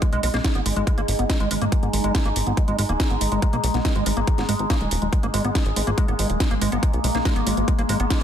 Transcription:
Already playing: G#3 D#4
0.02 G#3, kick, closed hi-hat
0.13 B1 G#3, closed hi-hat
0.23 B1 G#3, open hi-hat
0.34 B1 A#3, snare, closed hi-hat
0.44 kick, snare, closed hi-hat
0.55 G#1 B3, closed hi-hat
0.66 G#1 G#3, open hi-hat
0.76 G#1 G#3, closed hi-hat
0.87 G#3, kick, closed hi-hat
0.98 G#1 A#3, closed hi-hat
1.08 G#1, open hi-hat
1.19 G#1 B3, closed hi-hat
1.30 G#3, kick, snare, closed hi-hat
1.40 G#1 G#3, closed hi-hat
1.51 G#1 G#3, open hi-hat
1.62 G#1 A#3, closed hi-hat
1.72 kick, closed hi-hat
1.83 G#1 B3, closed hi-hat
1.93 G#1 G#3, open hi-hat
2.04 G#1 G#3, closed hi-hat
2.15 G#3, kick, snare, closed hi-hat
2.25 G#1 A#3, closed hi-hat
2.36 G#1, open hi-hat
2.47 G#1 B3, closed hi-hat
2.57 G#3, kick, closed hi-hat
2.68 G#1 G#3, closed hi-hat
2.79 G#1 G#3, open hi-hat
2.89 D#1 A#3, closed hi-hat
3.00 kick, snare, closed hi-hat
3.10 G#1 B3, closed hi-hat
3.21 G#1 G#3, open hi-hat
3.32 G#1 G#3, closed hi-hat
3.42 G#3, kick, closed hi-hat
3.53 B1 A#3, closed hi-hat
3.64 B1, open hi-hat
3.74 B1 B3, snare, closed hi-hat
3.85 G#3, kick, snare, closed hi-hat
3.96 G#1 G#3, closed hi-hat
4.06 G#1 G#3, open hi-hat
4.17 G#1 A#3, closed hi-hat
4.27 kick, closed hi-hat
4.38 G#1 B3, snare, closed hi-hat
4.49 G#1 G#3, open hi-hat
4.59 G#1 D#4, closed hi-hat
4.70 A#3, kick, snare, closed hi-hat
4.81 D#1 G#3, closed hi-hat
4.91 D#1, open hi-hat
5.02 D#1 G#3, closed hi-hat
5.13 G#3 A#3, kick, closed hi-hat
5.23 G#1 A#3, closed hi-hat
5.34 G#1 G#3, open hi-hat
5.44 G#1 B3, closed hi-hat
5.55 G#3, kick, snare, closed hi-hat
5.66 G#1, closed hi-hat
5.76 G#1 G#3, open hi-hat
5.87 G#1 A#3, closed hi-hat
5.98 G#3, kick, closed hi-hat
6.08 G#1 B3, closed hi-hat
6.19 G#1 G#3, open hi-hat
6.30 D#1, closed hi-hat
6.40 G#3, kick, snare, closed hi-hat
6.51 G#1 A#3, closed hi-hat
6.61 G#1 G#3, open hi-hat
6.72 G#1 B3, closed hi-hat
6.83 G#3, kick, closed hi-hat
6.93 B1, closed hi-hat
7.04 B1 G#3, open hi-hat
7.15 B1 A#3, snare, closed hi-hat
7.25 G#3, kick, snare, closed hi-hat
7.36 G#1 B3, closed hi-hat
7.47 G#1 G#3, open hi-hat
7.57 G#1, closed hi-hat
7.68 G#3, kick, closed hi-hat
7.79 G#1 A#3, closed hi-hat
7.89 G#1 G#3, open hi-hat
8.00 G#1 B3, closed hi-hat
8.10 G#3, kick, snare, closed hi-hat

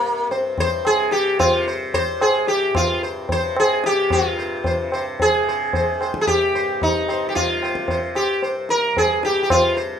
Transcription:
Already playing: C2 G2 C3 A#3
0.27 G2 C5
0.31 tabla tin
0.58 C5, tabla tin, tabla ge
0.85 C3 G#4, tabla na
1.11 G4, tabla te
1.39 F4, tabla na, tabla ge
1.47 C3
1.68 C5
1.94 C5, tabla tin, tabla ge
2.10 C2
2.21 G#4, tabla na
2.47 G4, tabla te
2.70 G2
2.75 F4, tabla na, tabla ge
3.03 C5
3.29 C3 C5, tabla tin, tabla ge
3.56 G#4, tabla na
3.84 G4, tabla te
3.91 C3
4.10 G2 F4 C5, tabla tin, tabla ge
4.39 C5
4.64 C5, tabla tin, tabla ge
4.72 C3
4.92 C5, tabla na
5.20 G#4, tabla tin, tabla ge
5.33 C3
5.48 C5
5.73 C5, tabla tin, tabla ge
5.91 C2
6.01 C5, tabla na
6.14 tabla ke
6.21 G#4
6.27 G4, tabla tin, tabla ge
6.52 G2 C5
6.82 D#4, tabla tin, tabla ge
7.08 C3 C5, tabla na
7.29 G4
7.35 F4, tabla tin, tabla ge
7.63 C5, tabla na
7.73 C3, tabla ke
7.88 C5, tabla tin, tabla ge
8.15 G4, tabla na
8.33 C2
8.43 C5, tabla tin
8.69 A#4, tabla te
8.92 G2
8.97 G#4, tabla tin, tabla ge
9.23 G4, tabla te
9.43 G4
9.50 C3 F4, tabla na, tabla ge
9.77 C5

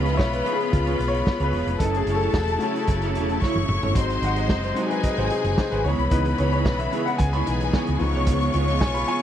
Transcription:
Already playing: C#2 C#3 F3 G#3 B3 D#4 F4 B4 B5
0.06 B3 F4 G#4 D#5, snare, closed hi-hat
0.15 C#5 E5
0.19 B1, muted clean electric guitar stroke, kick, snare
0.33 B4, muted clean electric guitar stroke, closed hi-hat
0.45 B3 F4 G#4 C#5, closed hi-hat
0.53 G#4
0.60 muted clean electric guitar stroke, closed hi-hat
0.72 C#2 F4, muted clean electric guitar stroke, kick, closed hi-hat
0.86 B3 F4 G#4 C#5, closed hi-hat
0.99 B1, muted clean electric guitar stroke, closed hi-hat
1.08 C#5
1.14 muted clean electric guitar stroke, closed hi-hat
1.26 muted clean electric guitar stroke, kick, snare
1.40 C#2 B3 F4 G#4 B4 C#5, closed hi-hat
1.53 E1 B3 F4 G#4 C#5, open hi-hat
1.67 F1, muted clean electric guitar stroke, closed hi-hat
1.78 F#1 C#3 F#3 A3 C#4 E4 A4 D#5 A5, kick, closed hi-hat
1.94 G#4, muted clean electric guitar stroke, closed hi-hat
2.06 F#1 C#4 E4 A4 C#5, closed hi-hat
2.15 A4
2.21 C#4 E4 A4 C#5, closed hi-hat
2.34 E1, muted clean electric guitar stroke, kick, snare
2.48 muted clean electric guitar stroke, closed hi-hat
2.58 F#3 A3 E4, closed hi-hat
2.62 C#4 E4 A4 C#5
2.76 muted clean electric guitar stroke, closed hi-hat
2.87 F#1, muted clean electric guitar stroke, kick, closed hi-hat
3.02 C#4 E4 A4 C#5, closed hi-hat
3.15 E1 C#4 E4 A4 C#5, closed hi-hat
3.29 muted clean electric guitar stroke, closed hi-hat
3.41 C#4 E4 A4 C#5 C#6, kick, snare
3.55 F#1, muted clean electric guitar stroke, high tom
3.68 F#1, muted clean electric guitar stroke, mid tom
3.83 G1 C#4 E4 A4 C#5, floor tom
3.94 G#1 C3 F#3 G#3 C4 D#4 F#4 C5 C6, kick, closed hi-hat
3.98 C5
4.10 muted clean electric guitar stroke, closed hi-hat
4.22 G#1 G#3 D#4 F#4 C5 F#5, closed hi-hat
4.36 G#3 D#4 F#4 D#5, closed hi-hat
4.49 F#1, muted clean electric guitar stroke, kick, snare
4.64 C5, muted clean electric guitar stroke, closed hi-hat
4.74 F#3 G#3 C4 D#4 F#4 G#4 G#5, closed hi-hat
4.78 C5
4.89 B4, muted clean electric guitar stroke, closed hi-hat
5.03 D#5, muted clean electric guitar stroke, kick, closed hi-hat
5.17 G#1 G#3 D#4 F#4 C5, closed hi-hat
5.31 G#4, muted clean electric guitar stroke, closed hi-hat
5.44 F#1, muted clean electric guitar stroke, closed hi-hat
5.58 C5, muted clean electric guitar stroke, kick, snare
5.71 G#1 G#3 D#4 F#4 B4 C5, closed hi-hat
5.84 C#2 C#3 E3 G#3 B3 E4 G#4 B4 C#5 B5, open hi-hat
5.98 C2, muted clean electric guitar stroke, closed hi-hat
6.10 C#2 E3 B3 D#4 E4 G#4 B4 D#5, kick, closed hi-hat
6.26 muted clean electric guitar stroke, closed hi-hat
6.38 C#2 B3 E4 G#4 C#5, closed hi-hat
6.52 B3 E4 G#4 C#5, closed hi-hat
6.65 B1, muted clean electric guitar stroke, kick, snare
6.79 E5, muted clean electric guitar stroke, closed hi-hat
6.92 B3 E4 G#4 C#5, closed hi-hat
7.06 F#5, muted clean electric guitar stroke, closed hi-hat
7.18 C#2 G#4 G#5, muted clean electric guitar stroke, kick, closed hi-hat
7.33 B3 E4 G#4 C#5 B5, closed hi-hat
7.46 B1 E3 B3 D#4, muted clean electric guitar stroke, closed hi-hat
7.61 muted clean electric guitar stroke, closed hi-hat
7.73 B3 E4 G#4 C#5, kick, snare
7.87 C#2, muted clean electric guitar stroke, closed hi-hat
7.99 C#2 F3 B3 D#4 F4 C#5 C#6, muted clean electric guitar stroke, open hi-hat
8.15 C2 B3 F4 G#4 C#5, closed hi-hat
8.27 C#2 B3 F4 G#4 C#5, kick, closed hi-hat
8.41 muted clean electric guitar stroke, closed hi-hat
8.54 C#2 B3 F4 G#4 C#5, closed hi-hat
8.68 B3 F4 G#4 D#5, snare, closed hi-hat
8.81 B1 G#5, muted clean electric guitar stroke, kick, snare
8.94 B5, muted clean electric guitar stroke, closed hi-hat
9.08 B3 F4 G#4 C#5 G#5, closed hi-hat

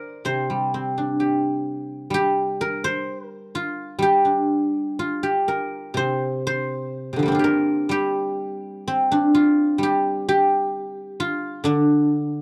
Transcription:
Already playing: A#4 C5 D5
0.25 C3 C5
0.50 G3
0.74 C4
0.98 D4
1.20 G4
2.10 G3 G4
2.61 A#4
2.84 C5
3.27 A#4
3.55 F4
3.99 G3 G4
4.25 D4
4.99 F4
5.23 G4
5.48 A#4
5.94 C3 C5
6.47 C5
7.13 C3 D3
7.19 F3 G3
7.26 A#3 C4
7.32 D4 F4
7.39 G4
7.44 A#4
7.89 G3 G4
8.88 C4
9.12 D4
9.35 F4
9.78 G3
9.83 G4
10.29 G4
11.20 F4
11.64 D3 D4

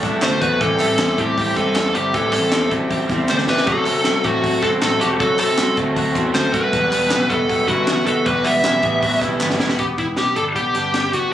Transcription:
Already playing: E3 A3 F#4
0.03 C2 F#3 A3 D4 E4, kick, snare, hi-hat pedal, open hi-hat
0.22 D2 D3 F#3 A3 E4 C5, snare, clap, hi-hat pedal, open hi-hat
0.41 E2 F#3 A3 E4 F#4 B4, kick, hi-hat pedal, open hi-hat
0.61 A1 A2 E3 G3 C4 E4 G4 A4, kick, hi-hat pedal, open hi-hat
0.79 A1 G3 A3 C4 E4, clap, hi-hat pedal, open hi-hat
0.99 E2 A2 E3 G3 C4 E4, snare, clap, hi-hat pedal, open hi-hat
1.18 A2 G3 A3 C4 E4 G4, kick, hi-hat pedal, open hi-hat
1.38 A2 E3 G3 C4 E4 G4, kick, hi-hat pedal, open hi-hat
1.56 G2 G3 C4 E4 A4, kick, snare, hi-hat pedal, open hi-hat
1.75 E2 A2 E3 G3 A3 C4 E4 A4, snare, clap, hi-hat pedal, open hi-hat
1.95 G1 G3 C4 E4 G4, hi-hat pedal, open hi-hat
2.14 A1 A2 E3 G3 C4 E4 G4 A4, kick, hi-hat pedal, open hi-hat
2.33 A1 G3 A3 C4 E4 A4, clap, hi-hat pedal, open hi-hat
2.52 E2 A2 E3 G3 C4 E4, snare, clap, hi-hat pedal, open hi-hat
2.71 F#2 G3 A3 C4 E4, kick, hi-hat pedal, open hi-hat
2.90 E3 G3 C4 E4 G4, kick, hi-hat pedal, open hi-hat
3.09 E2 G3 C4 E4, kick, snare, hi-hat pedal, open hi-hat
3.28 D2 A2 E3 G3 A3 C4 E4 C5, snare, clap
3.38 snare
3.47 C2 G3 C4 E4 G4 B4, snare
3.57 snare
3.67 F#1 F#3 C4 F#4 A4, kick, hi-hat pedal, open hi-hat
3.86 F#1 A3 C4 F#4 A4, clap, hi-hat pedal, open hi-hat
4.04 C2 F#3 C4 F#4 A4, snare, clap, hi-hat pedal, open hi-hat
4.24 A1 A3 C4 F#4 A4, kick, hi-hat pedal, open hi-hat
4.43 F#3 C4 F#4 A4, kick, hi-hat pedal, open hi-hat
4.62 C2 C4 F#4 A4, kick, snare, hi-hat pedal, open hi-hat
4.81 A1 F#3 A3 C4 F#4 A4, snare, clap, hi-hat pedal, open hi-hat
5.00 E1 C4 F#4 G4 A4, hi-hat pedal, open hi-hat
5.20 F#1 F#3 C4 F#4 A4, kick, hi-hat pedal, open hi-hat
5.39 F#1 A3 C4 F#4 A4, clap, hi-hat pedal, open hi-hat
5.58 C2 F#3 C4 F#4 A4, snare, clap, hi-hat pedal, open hi-hat
5.77 D2 A3 C4 F#4 A4, kick, hi-hat pedal, open hi-hat
5.96 F#3 C4 F#4 A4, kick, hi-hat pedal, open hi-hat
6.15 E2 C4 F#4 A4, kick, hi-hat pedal, open hi-hat
6.34 D2 F#3 A3 C4 F#4 A4 C5, snare, clap, hi-hat pedal, open hi-hat
6.53 C2 C4 F#4 A4 B4, kick, hi-hat pedal, open hi-hat
6.73 E1 E3 F#3 G3 B3 F#4 G4 B4, kick, hi-hat pedal, open hi-hat
6.92 E1 B3 G4 B4, clap, hi-hat pedal, open hi-hat
7.11 B1 E3 F#3 B3 E4 G4 B4, snare, clap, hi-hat pedal, open hi-hat
7.30 E1 B3 G4 A4 B4, kick, hi-hat pedal, open hi-hat
7.48 F#3 B3 F#4 G4 B4, kick, hi-hat pedal, open hi-hat
7.68 G1 B3 E4 F#4 G4 B4, kick, hi-hat pedal, open hi-hat
7.87 F#1 E3 F#3 B3 G4 B4, snare, clap, hi-hat pedal, open hi-hat
8.06 F#1 B3 F#4 G4 A4 B4, hi-hat pedal, open hi-hat
8.25 E1 E3 F#3 G3 B3 F#4 G4 B4, kick, hi-hat pedal, open hi-hat
8.44 E1 B3 G4 B4 E5, clap, hi-hat pedal, open hi-hat
8.64 B1 E3 F#3 B3 E4 G4 B4, snare, clap, hi-hat pedal, open hi-hat
8.83 A1 B3 G4 B4, kick, hi-hat pedal, open hi-hat
9.02 F#3 B3 F#4 G4 B4, kick, hi-hat pedal, open hi-hat
9.21 B1 B3 E4 G4 B4, kick, snare, hi-hat pedal, open hi-hat
9.40 G1 E3 F#3 B3 G4 B4, snare, clap
9.50 snare
9.60 E1 B3 E4 G4 B4, snare
9.69 F#4, snare
9.79 E1 B3 G4, kick, closed hi-hat
9.98 E1 B3 E4, kick, closed hi-hat
10.17 B1 G4, snare, closed hi-hat
10.36 G1 D4 A4, closed hi-hat
10.55 B1 B3 G4, kick, closed hi-hat
10.74 G1 D4, snare, closed hi-hat
10.94 G4, snare, closed hi-hat
11.13 F#1 B3 F#4, closed hi-hat

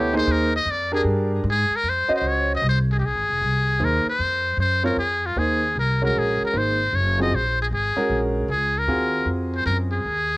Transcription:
Already playing: D2 B3 E4 G4 A4 C#5
0.13 A#3 D#4 G#4 C5
0.27 D#2
0.32 A#4
0.56 D#5
0.65 F2
0.71 D5
0.92 D4 G4 G#4 A#4
1.04 G2
1.44 G#2
1.50 G#4
1.70 muted upright bass stroke
1.76 A#4
1.83 F2
1.89 C5
2.08 C#4 F#4 C5 D#5, muted upright bass stroke
2.15 C5
2.21 C#2
2.28 C#5
2.55 D#5
2.62 C2
2.69 C5
2.92 G#4
2.99 A#1 G4
3.05 G#4
3.15 G#1
3.29 F1
3.41 C2
3.79 D#2 A#3 D#4 G#4 C5
3.84 A#4
4.06 C5, muted upright bass stroke
4.19 F2
4.57 F#2 C5
4.83 C4 F4 A#4 C#5
4.96 F2 G#4
5.26 F4
5.36 D#2 A#3 D#4 G#4 C5
5.75 C2 A#4
6.02 G#3 C#4 F#4 A#4
6.16 A#1 G#4
6.42 A#4, muted upright bass stroke
6.53 G#1 A#3 D#4 G#4 C5
6.57 C5
6.93 F#1 C#5
7.18 F#3 C4 F4 G#4 D#5
7.31 A#1 C5
7.62 G#4
7.71 G#1 G#4
7.96 G#3 C#4 F#4 A#4, muted upright bass stroke
8.09 A#1
8.48 C#2 G#4
8.78 A#4
8.87 D#2 C4 F4 F#4 G#4
9.25 F2
9.56 C5
9.66 F#2 A#4
9.93 G#4
10.04 D#2

